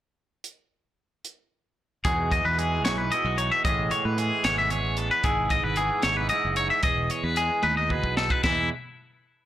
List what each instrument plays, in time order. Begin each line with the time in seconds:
0.44 closed hi-hat
1.25 closed hi-hat
2.05 fingered electric bass E2, clean electric guitar E2 E3 G#3 D#4 F#4 G#4, kick, closed hi-hat
2.32 clean electric guitar D#5, kick, closed hi-hat
2.45 fingered electric bass E2, clean electric guitar B4
2.58 clean electric guitar E3 G#3 G#4, closed hi-hat
2.84 fingered electric bass B1, clean electric guitar D#4 C#5, snare, closed hi-hat
2.98 clean electric guitar B4
3.12 clean electric guitar B2 E4 D#5, closed hi-hat
3.24 fingered electric bass B1, clean electric guitar F#4
3.38 clean electric guitar D#4 C#5, closed hi-hat
3.52 clean electric guitar E5
3.64 fingered electric bass A1, clean electric guitar A2 E3 G#3 B3 G#4 D#5, kick, closed hi-hat
3.91 clean electric guitar C#5, closed hi-hat
4.05 fingered electric bass A2, clean electric guitar B4
4.17 clean electric guitar E3 G#3 G#4, closed hi-hat
4.44 fingered electric bass G#1, clean electric guitar B3 C#5, snare, closed hi-hat
4.58 clean electric guitar E5
4.70 clean electric guitar E2 G#4 C#5, closed hi-hat
4.85 fingered electric bass A1
4.97 clean electric guitar B3 A4, closed hi-hat
5.11 clean electric guitar B4
5.24 fingered electric bass G#1, clean electric guitar G#2 E4 G#4, kick, closed hi-hat
5.50 clean electric guitar D#5, kick, closed hi-hat
5.64 fingered electric bass G#1, clean electric guitar B4
5.76 clean electric guitar E3 B3 G#4, closed hi-hat
6.02 fingered electric bass G#1, clean electric guitar D#4 C#5, snare, closed hi-hat
6.17 clean electric guitar B4
6.29 clean electric guitar G#2 E4 D#5, closed hi-hat
6.45 fingered electric bass F#1
6.56 clean electric guitar D#4 C#5, closed hi-hat
6.70 clean electric guitar E5
6.83 fingered electric bass E1, clean electric guitar E2 G#4 D#5, kick, closed hi-hat
7.10 clean electric guitar C#5, closed hi-hat
7.24 fingered electric bass E2, clean electric guitar B4
7.36 clean electric guitar G#3 G#4, closed hi-hat
7.63 fingered electric bass D#2, clean electric guitar D#4 B4, high tom
7.77 clean electric guitar D#5
7.90 clean electric guitar B2 G#4 B4, kick
8.04 fingered electric bass B1, kick
8.17 clean electric guitar D#4 A4, snare
8.30 clean electric guitar B4, kick
8.43 fingered electric bass E2, clean electric guitar E2 E3 G#3 D#4 E4, kick, snare, crash
8.48 clean electric guitar G#4